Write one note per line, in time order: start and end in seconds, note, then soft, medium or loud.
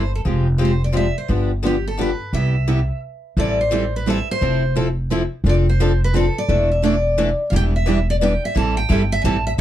0.00 0.20 G1 medium
0.00 0.11 C5 medium
0.15 0.20 A4 medium
0.25 1.09 F1 medium
0.25 0.47 F3 medium
0.25 0.47 G#3 medium
0.25 0.47 C4 medium
0.25 0.47 G4 medium
0.61 0.71 F3 medium
0.61 0.72 G#3 medium
0.61 0.72 C4 medium
0.61 0.72 G4 medium
0.65 0.84 C5 medium
0.84 0.96 D5 medium
0.95 1.06 F3 medium
0.95 1.06 G#3 medium
0.95 1.06 C4 medium
0.95 1.06 G4 medium
0.95 1.15 E5 medium
1.18 1.30 C5 medium
1.29 2.12 G1 medium
1.29 1.51 D3 medium
1.29 1.51 F3 medium
1.29 1.51 B3 medium
1.29 1.51 D4 medium
1.29 1.51 G4 medium
1.65 1.75 D3 medium
1.65 1.76 F3 medium
1.65 1.76 B3 medium
1.65 1.76 D4 medium
1.65 1.76 G4 medium
1.65 1.85 G4 medium
1.88 2.00 A4 medium
1.99 2.10 D3 medium
1.99 2.10 F3 medium
1.99 2.10 B3 medium
1.99 2.10 D4 medium
1.99 2.10 G4 medium
1.99 2.32 B4 medium
2.33 2.88 C2 medium
2.33 2.54 C3 medium
2.33 2.54 G3 medium
2.33 2.54 B3 medium
2.33 2.54 E4 medium
2.33 2.54 G4 medium
2.33 2.99 E5 medium
2.68 2.79 C3 medium
2.68 2.79 G3 medium
2.68 2.79 B3 medium
2.68 2.79 E4 medium
2.68 2.79 G4 medium
3.37 4.20 A1 medium
3.37 3.58 E3 medium
3.37 3.58 G3 medium
3.37 3.58 C4 medium
3.37 3.59 E4 medium
3.37 3.59 A4 medium
3.37 3.60 D5 medium
3.61 3.95 C5 medium
3.72 3.83 E3 medium
3.72 3.83 G3 medium
3.72 3.83 C4 loud
3.72 3.83 E4 medium
3.72 3.83 A4 loud
3.96 4.07 B4 medium
4.06 4.17 E3 medium
4.06 4.17 G3 medium
4.06 4.18 C4 medium
4.06 4.18 E4 medium
4.06 4.18 A4 medium
4.06 4.28 E5 medium
4.31 4.74 C5 medium
4.41 5.24 F1 medium
4.41 4.62 F3 medium
4.41 4.62 C4 medium
4.41 4.62 E4 medium
4.41 4.63 A4 medium
4.76 4.86 F3 medium
4.76 4.86 C4 medium
4.76 4.87 E4 medium
4.76 4.87 A4 loud
5.10 5.21 F3 medium
5.10 5.21 C4 medium
5.10 5.22 E4 medium
5.10 5.22 A4 medium
5.44 6.27 F1 medium
5.44 5.66 F3 medium
5.44 5.66 C4 medium
5.44 5.66 D4 medium
5.44 5.66 A4 medium
5.49 5.54 D5 medium
5.69 6.00 C5 medium
5.80 5.91 F3 medium
5.80 5.91 C4 loud
5.80 5.91 D4 loud
5.80 5.91 A4 loud
6.04 6.16 B4 medium
6.13 6.25 F3 medium
6.13 6.25 C4 medium
6.13 6.25 D4 medium
6.13 6.25 A4 medium
6.13 6.37 A4 medium
6.38 6.69 D5 medium
6.49 7.31 E1 medium
6.49 6.69 E3 medium
6.49 6.69 A3 medium
6.49 6.69 D4 medium
6.49 6.69 E4 medium
6.49 6.69 A4 medium
6.72 6.84 E5 medium
6.82 6.94 E3 medium
6.82 6.94 A3 loud
6.82 6.94 D4 medium
6.82 6.94 E4 medium
6.82 6.94 A4 loud
6.82 7.36 D5 medium
7.18 7.28 E3 medium
7.18 7.29 A3 medium
7.18 7.29 D4 medium
7.18 7.29 E4 medium
7.18 7.29 A4 medium
7.50 8.35 E1 medium
7.50 7.73 E3 medium
7.50 7.73 G3 medium
7.50 7.73 B3 medium
7.50 7.73 D4 medium
7.50 7.73 E4 medium
7.50 7.73 G4 medium
7.50 7.73 B4 medium
7.50 7.53 F5 medium
7.56 7.61 G5 loud
7.76 8.07 E5 medium
7.87 7.98 E3 loud
7.87 7.98 G3 medium
7.87 7.98 B3 medium
7.87 7.98 D4 medium
7.87 7.99 E4 loud
7.87 7.98 G4 loud
7.87 7.99 B4 loud
8.10 8.15 D5 medium
8.21 8.32 E3 medium
8.21 8.32 G3 medium
8.21 8.32 B3 medium
8.21 8.32 D4 medium
8.21 8.32 E4 medium
8.21 8.33 G4 loud
8.21 8.33 B4 medium
8.21 8.44 G5 medium
8.45 8.57 E5 medium
8.56 8.83 A1 medium
8.56 8.77 E3 medium
8.56 8.77 G3 medium
8.56 8.77 C4 medium
8.56 8.77 E4 medium
8.56 8.77 A4 medium
8.56 8.76 A5 loud
8.77 9.12 G5 medium
8.90 9.19 G1 medium
8.90 9.02 E3 medium
8.90 9.02 G3 loud
8.90 9.02 C4 medium
8.90 9.02 E4 loud
8.90 9.02 A4 loud
9.12 9.21 E5 loud
9.22 9.54 A1 medium
9.22 9.36 E3 medium
9.22 9.36 G3 medium
9.22 9.25 G#5 medium
9.22 9.44 A5 medium
9.26 9.36 C4 medium
9.26 9.36 E4 medium
9.26 9.36 A4 medium
9.47 9.52 E5 medium